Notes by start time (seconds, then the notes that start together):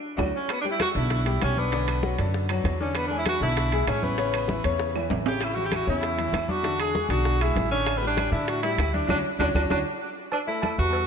Already playing: D4
0.17 D2 A3 D4 F#4, high bongo, high conga, high timbale, claves
0.36 C#4
0.48 B3, high bongo, high conga, high timbale, claves
0.61 G3 D4 G4 G5, high bongo, high conga
0.71 E4
0.80 F#4, high bongo, high conga, high timbale, claves
0.95 B1 D3 D4 E4 D5, high bongo, high conga
1.10 high bongo, high conga, high timbale
1.25 G3 G4 G5, high bongo, high conga, high timbale
1.41 B1 C#4, high bongo, low bongo, high conga, high timbale, claves
1.57 B3 D4 D5 D6, high conga
1.72 D3 D4 D5, high bongo, high conga, high timbale
1.88 high bongo, high conga, high timbale, claves
2.03 F#3 F#4 F#5, high bongo, high conga
2.18 F#2 D3 D4 D5, high bongo, high conga, high timbale
2.34 high bongo, high conga
2.49 F#3 F#4 F#5, high bongo, high conga, high timbale, claves
2.64 E2, high bongo, low bongo, high conga, high timbale
2.80 D3 C#4 D4 D5, high conga
2.95 B3, high bongo, high conga, high timbale, claves
3.08 G#3 D4 G#4, high bongo, high conga
3.12 G#5
3.18 E4
3.26 F#4, high bongo, high conga, high timbale, claves
3.40 B1 D3 D4 E4 D5, high bongo, high conga
3.57 high bongo, high conga, high timbale
3.72 G#3 G#4 G#5, high bongo, high conga, high timbale
3.87 A1 C#4, high bongo, low bongo, high conga, high timbale, claves
4.02 B3 C#4 C#5 C#6, high conga
4.18 C#3 C#4 C#5, high bongo, high conga, high timbale
4.34 high bongo, high conga, high timbale, claves
4.48 E3 E4 E5, high bongo, high conga
4.64 E2 C#3 C#4 C#5, high bongo, high conga, high timbale
4.79 high bongo, high conga
4.95 E3 E4 E5, high bongo, high conga, high timbale, claves
5.10 A1, high bongo, low bongo, high conga, low timbale
5.26 C#3 C#4 G4 C#5, high conga, low timbale
5.41 E4, high bongo, high conga, high timbale, claves
5.54 E3 E4 F#4 E5, high bongo, high conga
5.65 G4
5.72 F#4, high bongo, high conga, high timbale, claves
5.87 E2 C#3 C#4 E4 C#5, high bongo, high conga
6.03 high bongo, high conga, high timbale
6.18 E3 E4 E5, high bongo, high conga, high timbale
6.32 E2, high bongo, low bongo, high conga, high timbale, claves
6.48 D4 F#4 D5 D6, high conga
6.63 D3 D4 D5, high bongo, high conga, high timbale
6.80 G#4, high bongo, high conga, high timbale, claves
6.95 G#3 G#4 G#5, high bongo, high conga
7.09 B1 D3 D4 F#4 D5, high bongo, high conga, high timbale
7.25 high bongo, high conga
7.41 G#3 E4 G#4 G#5, high bongo, high conga, high timbale, claves
7.56 A1, high bongo, low bongo, high conga, high timbale
7.71 D3 C#4 D4 D5, high conga
7.86 high bongo, high conga, high timbale, claves
7.98 B3
8.02 G3 G4 G5, high bongo, high conga
8.07 D4
8.17 high bongo, high conga, high timbale, claves
8.32 A2 D3 D4 E4 D5, high bongo, high conga
8.47 F#4, high bongo, high conga, high timbale
8.62 G3 E4 G4 G5, high bongo, high conga, high timbale
8.78 D2, high bongo, low bongo, high conga, high timbale, claves
8.93 D4 D5 D6, high conga
9.08 D2 C#4 D4 F#4, high bongo, high conga, high timbale, claves
9.39 D2 C#4 D4 F#4, high bongo, high conga, high timbale, claves
9.54 D2 C#4 D4 F#4, high bongo, high conga, high timbale, claves
9.70 D2 C#4 D4 F#4, high bongo, high conga, high timbale, claves
10.32 D4, cowbell, high conga, low agogo, claves
10.47 A3 E4 A4, high conga
10.62 cowbell, high conga, low agogo, claves
10.78 E2 G3 F#4 A4 B4, high conga
10.93 cowbell, high conga, low agogo